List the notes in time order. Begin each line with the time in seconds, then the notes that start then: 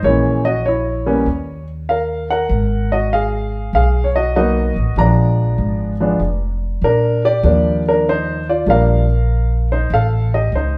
0.03 A#1 E3 G#3 A#3 C#4 E4 C#5
0.45 F#4 D#5
0.66 E4 C#5
1.06 G3 A#3 B3 C#4
1.26 D#2
1.89 A#4 F5
2.30 A#4 F#5
2.49 G#1
2.92 F#4 D#5
3.13 G#4 F5
3.73 B1 G#4 F5
4.04 C#5
4.16 F#4 D#5
4.36 F#3 A#3 B3 D#4 F#4 D#5
4.76 A1
4.96 A#1 F3 G#3 B3 D4 D5 A#5
5.58 G#1
6.00 F3 G#3 B3 D4
6.19 F1
6.82 A#2 D4 A#4
7.25 G4 D5
7.43 D#2 F3 G3 A#3 D4
7.88 D4 A#4
8.09 D#4 C5
8.49 F4 D5
8.66 A#1 F3 G3 A#3 D4 A#4 F5
9.72 D#4 C5
9.90 A1 A4 F5
10.34 G4 D#5
10.52 C#2 C5
10.57 D#4